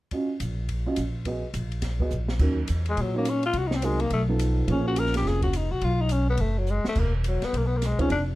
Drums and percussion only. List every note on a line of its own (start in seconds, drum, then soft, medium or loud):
0.11 kick soft
0.11 ride soft
0.40 hi-hat pedal medium
0.40 ride medium
0.68 kick soft
0.68 ride soft
0.96 hi-hat pedal soft
0.96 ride medium
1.25 kick soft
1.25 ride soft
1.54 hi-hat pedal medium
1.54 ride medium
1.72 ride soft
1.82 kick soft
1.82 snare soft
1.82 ride medium
2.00 kick soft
2.11 hi-hat pedal soft
2.28 snare medium
2.39 kick medium
2.39 crash medium
2.68 hi-hat pedal medium
2.68 ride medium
2.86 ride soft
2.97 kick soft
2.97 ride medium
3.25 hi-hat pedal medium
3.25 ride medium
3.43 ride soft
3.53 kick soft
3.53 ride medium
3.71 snare medium
3.82 hi-hat pedal soft
3.82 ride medium
4.00 ride soft
4.10 kick soft
4.10 ride medium
4.39 hi-hat pedal medium
4.39 ride medium
4.68 kick soft
4.68 ride medium
4.96 hi-hat pedal medium
4.96 ride medium
5.06 snare soft
5.14 snare soft
5.14 ride medium
5.25 kick soft
5.25 snare soft
5.42 kick soft
5.42 ride soft
5.53 hi-hat pedal medium
5.53 ride medium
5.81 kick soft
5.81 ride soft
6.09 hi-hat pedal medium
6.09 ride medium
6.37 kick soft
6.37 ride medium
6.66 hi-hat pedal soft
6.85 snare medium
6.95 kick medium
6.95 crash medium
7.24 hi-hat pedal medium
7.24 ride medium
7.42 snare soft
7.42 ride soft
7.53 kick soft
7.53 ride medium
7.82 snare soft
7.82 hi-hat pedal medium
7.82 ride medium
7.99 kick soft
7.99 ride soft
8.10 kick soft
8.10 ride medium